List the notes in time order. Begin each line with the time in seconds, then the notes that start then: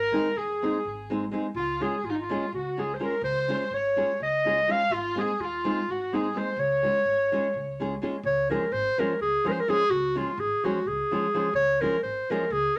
Already playing: G#1 A#4
0.12 G#3 C4 D#4 G#4
0.36 D#2 G#4
0.62 G#3 C4 D#4 G#4
0.85 G#1
1.10 G#3 C4 D#4 G#4
1.31 G#3 C4 D#4 G#4
1.54 C#2 F4
1.80 G#3 C#4 F4 G#4
2.03 G#1 F4
2.10 D#4 F4
2.14 D#4
2.21 F4
2.29 G#3 C#4 F4 G#4
2.53 C#2 F#4
2.57 F#4
2.77 G#3 C#4 F4 G#4
2.82 G#4
2.94 C5
2.99 G#3 C#4 F4 G#4 A#4
3.21 C#2 C5
3.26 C5
3.48 G#3 C#4 F4 G#4
3.71 G#1 C#5
3.76 C#5
3.96 G#3 C#4 F4 G#4
4.20 C#2 D#5
4.24 D#5
4.45 G#3 C#4 F4 G#4
4.67 G#3 C#4 F4 G#4 F5
4.72 F5
4.90 G#1 F4
4.95 F4
5.15 G#3 C4 D#4 G#4
5.20 G#4
5.39 D#2 F4
5.44 F4
5.64 G#3 C4 D#4 G#4
5.88 G#1 F#4
6.12 G#3 C4 D#4 G#4
6.34 G#3 C4 D#4 G#4 C5
6.56 C#2 C#5
6.83 G#3 C#4 F4 G#4
7.05 G#1
7.32 G#3 C#4 F4 G#4
7.54 C#2
7.80 G#3 C#4 F4 G#4
8.02 G#3 C#4 F4 G#4
8.23 C#2 C#5
8.49 F3 G#3 C#4 F4 G#4 A#4
8.72 G#1 C5
8.98 F3 G#3 C#4 F4 G#4 A#4
9.21 C#2 G#4
9.44 F3 G#3 C#4 F4 G#4 A#4
9.51 C5
9.60 A#4
9.68 F3 G#3 C#4 F4 G#4
9.89 C#2 F#4
10.15 F3 G#3 C#4 F4 G#4
10.37 G#1 G#4
10.63 F3 G#3 C#4 F4 F#4 G#4
10.86 C#2 G#4
11.11 F3 G#3 C#4 F4 G#4
11.34 F3 G#3 C#4 F4 G#4
11.54 C#2 C#5
11.81 F3 G#3 C#4 F4 G#4 A#4
12.03 G#1 C5
12.30 F3 G#3 C#4 F4 G#4 A#4
12.50 C#2 G#4